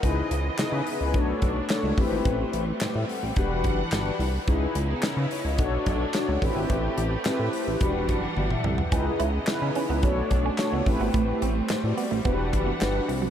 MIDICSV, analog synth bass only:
0, 0, Header, 1, 2, 480
1, 0, Start_track
1, 0, Tempo, 555556
1, 28, Time_signature, 4, 2, 24, 8
1, 11491, End_track
2, 0, Start_track
2, 0, Title_t, "Analog synth bass"
2, 0, Program_c, 0, 38
2, 28, Note_on_c, 0, 37, 102
2, 193, Note_off_c, 0, 37, 0
2, 268, Note_on_c, 0, 37, 112
2, 433, Note_off_c, 0, 37, 0
2, 508, Note_on_c, 0, 49, 49
2, 556, Note_off_c, 0, 49, 0
2, 623, Note_on_c, 0, 49, 92
2, 707, Note_off_c, 0, 49, 0
2, 869, Note_on_c, 0, 37, 97
2, 988, Note_on_c, 0, 35, 104
2, 1001, Note_off_c, 0, 37, 0
2, 1153, Note_off_c, 0, 35, 0
2, 1229, Note_on_c, 0, 35, 90
2, 1394, Note_off_c, 0, 35, 0
2, 1585, Note_on_c, 0, 37, 101
2, 1669, Note_off_c, 0, 37, 0
2, 1706, Note_on_c, 0, 33, 103
2, 1789, Note_off_c, 0, 33, 0
2, 1830, Note_on_c, 0, 32, 89
2, 1912, Note_off_c, 0, 32, 0
2, 1949, Note_on_c, 0, 33, 107
2, 2113, Note_off_c, 0, 33, 0
2, 2189, Note_on_c, 0, 33, 103
2, 2354, Note_off_c, 0, 33, 0
2, 2432, Note_on_c, 0, 45, 52
2, 2479, Note_off_c, 0, 45, 0
2, 2552, Note_on_c, 0, 45, 93
2, 2633, Note_off_c, 0, 45, 0
2, 2789, Note_on_c, 0, 33, 89
2, 2871, Note_off_c, 0, 33, 0
2, 2908, Note_on_c, 0, 28, 99
2, 3150, Note_on_c, 0, 30, 91
2, 3163, Note_off_c, 0, 28, 0
2, 3314, Note_off_c, 0, 30, 0
2, 3387, Note_on_c, 0, 31, 103
2, 3553, Note_off_c, 0, 31, 0
2, 3624, Note_on_c, 0, 36, 99
2, 3790, Note_off_c, 0, 36, 0
2, 3869, Note_on_c, 0, 37, 108
2, 4033, Note_off_c, 0, 37, 0
2, 4107, Note_on_c, 0, 37, 117
2, 4272, Note_off_c, 0, 37, 0
2, 4352, Note_on_c, 0, 49, 54
2, 4399, Note_off_c, 0, 49, 0
2, 4465, Note_on_c, 0, 49, 93
2, 4549, Note_off_c, 0, 49, 0
2, 4708, Note_on_c, 0, 37, 92
2, 4828, Note_on_c, 0, 35, 112
2, 4841, Note_off_c, 0, 37, 0
2, 4993, Note_off_c, 0, 35, 0
2, 5069, Note_on_c, 0, 35, 94
2, 5234, Note_off_c, 0, 35, 0
2, 5430, Note_on_c, 0, 37, 91
2, 5512, Note_off_c, 0, 37, 0
2, 5546, Note_on_c, 0, 33, 97
2, 5629, Note_off_c, 0, 33, 0
2, 5671, Note_on_c, 0, 32, 92
2, 5752, Note_off_c, 0, 32, 0
2, 5788, Note_on_c, 0, 33, 112
2, 5953, Note_off_c, 0, 33, 0
2, 6030, Note_on_c, 0, 33, 103
2, 6194, Note_off_c, 0, 33, 0
2, 6267, Note_on_c, 0, 45, 54
2, 6315, Note_off_c, 0, 45, 0
2, 6389, Note_on_c, 0, 45, 91
2, 6471, Note_off_c, 0, 45, 0
2, 6629, Note_on_c, 0, 33, 87
2, 6711, Note_off_c, 0, 33, 0
2, 6748, Note_on_c, 0, 28, 96
2, 6989, Note_on_c, 0, 30, 82
2, 7002, Note_off_c, 0, 28, 0
2, 7153, Note_off_c, 0, 30, 0
2, 7229, Note_on_c, 0, 31, 100
2, 7394, Note_off_c, 0, 31, 0
2, 7468, Note_on_c, 0, 36, 100
2, 7633, Note_off_c, 0, 36, 0
2, 7708, Note_on_c, 0, 37, 103
2, 7873, Note_off_c, 0, 37, 0
2, 7949, Note_on_c, 0, 37, 118
2, 8113, Note_off_c, 0, 37, 0
2, 8191, Note_on_c, 0, 49, 49
2, 8239, Note_off_c, 0, 49, 0
2, 8310, Note_on_c, 0, 49, 90
2, 8392, Note_off_c, 0, 49, 0
2, 8551, Note_on_c, 0, 37, 95
2, 8668, Note_on_c, 0, 35, 113
2, 8681, Note_off_c, 0, 37, 0
2, 8833, Note_off_c, 0, 35, 0
2, 8909, Note_on_c, 0, 35, 86
2, 9074, Note_off_c, 0, 35, 0
2, 9267, Note_on_c, 0, 37, 94
2, 9350, Note_off_c, 0, 37, 0
2, 9388, Note_on_c, 0, 33, 107
2, 9471, Note_off_c, 0, 33, 0
2, 9508, Note_on_c, 0, 32, 85
2, 9590, Note_off_c, 0, 32, 0
2, 9626, Note_on_c, 0, 33, 104
2, 9792, Note_off_c, 0, 33, 0
2, 9870, Note_on_c, 0, 33, 96
2, 10034, Note_off_c, 0, 33, 0
2, 10113, Note_on_c, 0, 45, 53
2, 10160, Note_off_c, 0, 45, 0
2, 10227, Note_on_c, 0, 45, 93
2, 10310, Note_off_c, 0, 45, 0
2, 10468, Note_on_c, 0, 33, 86
2, 10550, Note_off_c, 0, 33, 0
2, 10587, Note_on_c, 0, 28, 93
2, 10829, Note_on_c, 0, 30, 84
2, 10842, Note_off_c, 0, 28, 0
2, 10993, Note_off_c, 0, 30, 0
2, 11073, Note_on_c, 0, 31, 105
2, 11236, Note_off_c, 0, 31, 0
2, 11312, Note_on_c, 0, 36, 96
2, 11476, Note_off_c, 0, 36, 0
2, 11491, End_track
0, 0, End_of_file